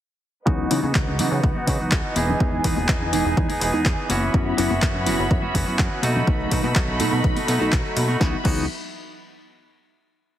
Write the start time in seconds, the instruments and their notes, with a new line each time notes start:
0.46 analog synth bass C#2, tine electric piano E3 F#3 B3 D#4, clean electric guitar E3 B3 D#4 F#4, violin section B4 D#5 F#5, kick
0.70 analog synth bass C#3, clean electric guitar E3 B3 D#4 F#4, tine electric piano E3 F#3 B3 D#4, open hi-hat
0.83 analog synth bass C#3, clean electric guitar B3 D#4 F#4, high conga, shaker
0.94 analog synth bass C#2, clean electric guitar E3 B3, kick, clap, shaker
1.08 low conga
1.18 analog synth bass C#3, clean electric guitar E3 B3 D#4 F#4, tine electric piano E3 F#3 B3 D#4, open hi-hat
1.31 analog synth bass C#3, clean electric guitar B3 D#4 F#4
1.43 analog synth bass C#2, tine electric piano E3 F#3 B3 D#4, kick
1.55 analog synth bass C#3, clean electric guitar B3 D#4 F#4, high conga
1.67 analog synth bass C#3, clean electric guitar E3 B3 D#4 F#4, kick, open hi-hat, low conga, shaker
1.79 analog synth bass C#2, tine electric piano E3 F#3 B3 D#4, clean electric guitar B3 D#4 F#4
1.91 analog synth bass C#2, clean electric guitar E3 B3 D#4 F#4, kick, clap
2.16 analog synth bass E1, clean electric guitar E3 B3 D#4 G#4, violin section G#5, open hi-hat, high conga, shaker
2.28 low conga, shaker
2.40 analog synth bass E2, tine electric piano E3 G#3 B3 D#4, kick
2.64 analog synth bass E1, clean electric guitar E3 B3 D#4 G#4, tine electric piano E3 G#3 B3 D#4, kick, open hi-hat
2.76 analog synth bass E1, clean electric guitar B3 D#4 G#4, high conga, shaker
2.88 analog synth bass E2, clean electric guitar E3 B3 D#4, kick, clap, shaker
3.02 low conga
3.12 analog synth bass E1, clean electric guitar E3 B3 D#4 G#4, tine electric piano E3 G#3 B3 D#4, open hi-hat
3.24 analog synth bass E1, clean electric guitar B3 D#4 G#4
3.37 analog synth bass E2, tine electric piano E3 G#3 B3, kick
3.49 analog synth bass E1, clean electric guitar B3 D#4 G#4, open hi-hat, high conga
3.60 analog synth bass E1, clean electric guitar E3 B3 D#4 G#4, open hi-hat, shaker
3.72 tine electric piano E3 G#3 B3 D#4, clean electric guitar B3 D#4 G#4
3.85 analog synth bass E2, clean electric guitar E3 B3 D#4 G#4, kick, clap
4.09 analog synth bass F#1, clean electric guitar E3 B3 C#4 F#4, violin section F#4 E5 B5, open hi-hat, high conga, shaker
4.34 analog synth bass F#2, tine electric piano F#3 B3 C#4 E4, kick
4.47 shaker
4.57 analog synth bass F#1, clean electric guitar E3 B3 C#4 F#4, tine electric piano F#3 B3 C#4 E4, open hi-hat
4.70 analog synth bass F#1, clean electric guitar B3 C#4 F#4, high conga, shaker
4.81 analog synth bass F#2, clean electric guitar E3 B3 C#4 F#4, kick, clap
4.94 low conga
5.05 analog synth bass F#1, clean electric guitar E3 B3 C#4 F#4, tine electric piano F#3 B3 C#4 E4, open hi-hat
5.18 analog synth bass F#1, clean electric guitar B3 C#4 F#4
5.31 analog synth bass F#2, tine electric piano F#3 B3 C#4 E4, kick
5.42 analog synth bass F#1, clean electric guitar B3 C#4 F#4, high conga
5.54 analog synth bass F#1, clean electric guitar E3 B3 C#4 F#4, kick, open hi-hat, low conga, shaker
5.66 analog synth bass F#2, tine electric piano F#3 B3 C#4 E4, clean electric guitar B3 C#4 F#4, shaker
5.78 analog synth bass F#2, clean electric guitar E3 B3 C#4 F#4, kick, clap
5.91 shaker
6.02 analog synth bass B2, clean electric guitar F#3 A3 D#4 F#4, violin section A4 D#5 B5, open hi-hat, high conga, shaker
6.16 low conga, shaker
6.27 analog synth bass B1, tine electric piano F#3 A3 B3 D#4, kick, shaker
6.40 shaker
6.50 analog synth bass B2, clean electric guitar F#3 A3 D#4 F#4, tine electric piano F#3 A3 B3 D#4, kick, open hi-hat
6.63 analog synth bass B2, clean electric guitar A3 D#4 F#4, high conga, shaker
6.75 analog synth bass B1, clean electric guitar F#3 A3 D#4 F#4, kick, clap
6.88 low conga
6.99 analog synth bass B2, clean electric guitar F#3 A3 D#4 F#4, tine electric piano F#3 A3 B3 D#4, open hi-hat
7.11 analog synth bass B2, clean electric guitar A3 D#4 F#4, shaker
7.24 analog synth bass B1, tine electric piano F#3 A3 B3 D#4, kick, shaker
7.35 analog synth bass B2, clean electric guitar A3 D#4 F#4, open hi-hat, high conga
7.47 analog synth bass B2, clean electric guitar F#3 A3 D#4 F#4, open hi-hat, shaker
7.60 analog synth bass B1, tine electric piano F#3 A3 B3 D#4, clean electric guitar A3 D#4 F#4, shaker
7.71 analog synth bass B1, clean electric guitar F#3 A3 F#4, kick, clap
7.85 shaker
7.97 analog synth bass B2, open hi-hat, high conga, shaker
8.08 clean electric guitar A3 D#4 F#4, shaker
8.20 analog synth bass C#2, clean electric guitar E3 B3 F#4, tine electric piano E3 F#3 B3 D#4, violin section F#4 D#5 E5 B5, kick, snare
8.44 analog synth bass C#2, tine electric piano E3 F#3 B3 D#4, clean electric guitar E3 B3 D#4 F#4, kick, crash